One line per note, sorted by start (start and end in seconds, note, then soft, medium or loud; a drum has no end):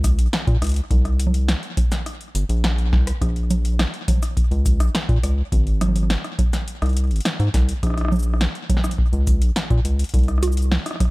0.00 0.20 C#2 medium
0.04 kick loud
0.04 cross-stick medium
0.04 closed hi-hat medium
0.04 shaker medium
0.18 0.28 A#1 medium
0.18 closed hi-hat medium
0.33 snare loud
0.33 closed hi-hat medium
0.47 0.57 A#2 loud
0.47 kick loud
0.47 closed hi-hat soft
0.62 0.81 C#2 medium
0.62 cross-stick medium
0.62 closed hi-hat medium
0.64 closed hi-hat medium
0.67 closed hi-hat medium
0.69 closed hi-hat soft
0.72 closed hi-hat soft
0.74 closed hi-hat soft
0.76 closed hi-hat medium
0.91 1.55 C2 loud
0.91 kick loud
0.91 closed hi-hat soft
1.05 cross-stick medium
1.05 closed hi-hat soft
1.20 closed hi-hat medium
1.27 low conga medium
1.34 closed hi-hat soft
1.48 snare loud
1.48 closed hi-hat medium
1.63 closed hi-hat soft
1.77 kick loud
1.77 closed hi-hat medium
1.77 low conga medium
1.92 snare medium
1.92 closed hi-hat soft
1.92 shaker medium
2.06 cross-stick soft
2.06 closed hi-hat soft
2.21 closed hi-hat soft
2.35 2.44 G1 medium
2.35 closed hi-hat medium
2.49 2.94 A#1 loud
2.49 closed hi-hat soft
2.64 snare loud
2.64 closed hi-hat medium
2.78 closed hi-hat soft
2.93 3.12 C2 loud
2.93 kick loud
2.93 snare medium
3.07 cross-stick medium
3.07 closed hi-hat medium
3.21 3.86 A#1 loud
3.21 kick loud
3.21 cross-stick soft
3.21 closed hi-hat soft
3.36 closed hi-hat soft
3.50 closed hi-hat medium
3.50 low conga medium
3.50 shaker medium
3.65 closed hi-hat medium
3.79 cross-stick medium
3.79 snare loud
3.79 closed hi-hat medium
3.94 closed hi-hat soft
4.08 kick loud
4.08 closed hi-hat medium
4.08 low conga medium
4.10 low conga medium
4.13 low conga medium
4.15 low conga soft
4.18 low conga soft
4.20 cross-stick soft
4.20 closed hi-hat soft
4.20 low conga soft
4.20 shaker medium
4.37 kick loud
4.37 closed hi-hat soft
4.51 4.82 C#2 medium
4.51 closed hi-hat soft
4.66 kick loud
4.66 closed hi-hat medium
4.66 shaker medium
4.80 4.90 A#1 medium
4.80 cross-stick medium
4.80 closed hi-hat soft
4.95 snare loud
4.95 closed hi-hat medium
5.09 5.19 A#2 medium
5.09 kick loud
5.09 closed hi-hat soft
5.23 5.43 C#2 medium
5.23 cross-stick soft
5.23 closed hi-hat medium
5.52 6.17 G#1 loud
5.52 kick loud
5.52 closed hi-hat soft
5.67 closed hi-hat soft
5.81 cross-stick medium
5.81 closed hi-hat medium
5.81 low conga medium
5.88 low conga medium
5.96 closed hi-hat soft
5.96 low conga medium
6.03 low conga soft
6.10 snare loud
6.10 closed hi-hat medium
6.24 cross-stick medium
6.24 closed hi-hat soft
6.39 kick loud
6.39 closed hi-hat medium
6.39 low conga medium
6.53 snare medium
6.53 closed hi-hat soft
6.53 shaker medium
6.68 closed hi-hat soft
6.82 7.12 C2 medium
6.82 cross-stick medium
6.82 closed hi-hat soft
6.86 closed hi-hat soft
6.89 closed hi-hat soft
6.93 closed hi-hat soft
6.97 closed hi-hat medium
7.04 closed hi-hat soft
7.07 7.20 G#1 medium
7.07 closed hi-hat soft
7.11 closed hi-hat soft
7.16 closed hi-hat soft
7.20 closed hi-hat soft
7.25 cross-stick medium
7.25 snare loud
7.25 closed hi-hat medium
7.40 7.49 G#2 loud
7.40 closed hi-hat soft
7.54 7.73 C2 medium
7.54 kick loud
7.54 snare medium
7.54 closed hi-hat medium
7.69 closed hi-hat soft
7.83 8.47 A#1 loud
7.83 kick loud
7.83 cross-stick soft
7.83 closed hi-hat soft
7.87 cross-stick soft
7.90 cross-stick soft
7.94 cross-stick medium
7.98 cross-stick medium
7.98 closed hi-hat soft
8.01 cross-stick medium
8.05 cross-stick medium
8.08 cross-stick medium
8.08 low conga medium
8.08 shaker soft
8.16 shaker soft
8.19 shaker soft
8.23 shaker medium
8.34 cross-stick medium
8.41 snare loud
8.41 closed hi-hat medium
8.55 closed hi-hat soft
8.70 kick loud
8.70 closed hi-hat medium
8.70 low conga medium
8.74 snare medium
8.74 low conga medium
8.79 low conga medium
8.84 cross-stick medium
8.84 low conga soft
8.84 shaker medium
8.89 closed hi-hat soft
8.89 low conga soft
8.94 low conga soft
8.98 kick loud
9.13 9.43 C#2 medium
9.13 closed hi-hat soft
9.27 kick loud
9.27 closed hi-hat medium
9.27 shaker medium
9.41 9.51 A#1 medium
9.41 closed hi-hat medium
9.56 snare loud
9.56 closed hi-hat medium
9.70 9.80 A#2 loud
9.70 kick loud
9.70 closed hi-hat soft
9.85 10.04 C#2 medium
9.85 closed hi-hat medium
9.99 closed hi-hat soft
10.04 closed hi-hat soft
10.09 closed hi-hat soft
10.14 10.78 C2 loud
10.14 kick loud
10.14 closed hi-hat medium
10.19 closed hi-hat soft
10.23 closed hi-hat soft
10.28 cross-stick medium
10.28 closed hi-hat soft
10.38 cross-stick soft
10.43 closed hi-hat loud
10.43 low conga medium
10.43 shaker medium
10.47 cross-stick soft
10.52 shaker soft
10.57 closed hi-hat medium
10.62 shaker soft
10.72 snare loud
10.72 low conga medium
10.86 cross-stick medium
10.86 closed hi-hat medium
10.91 cross-stick medium
10.96 cross-stick medium
11.00 kick loud
11.00 cross-stick soft
11.00 closed hi-hat medium
11.00 low conga medium
11.05 cross-stick soft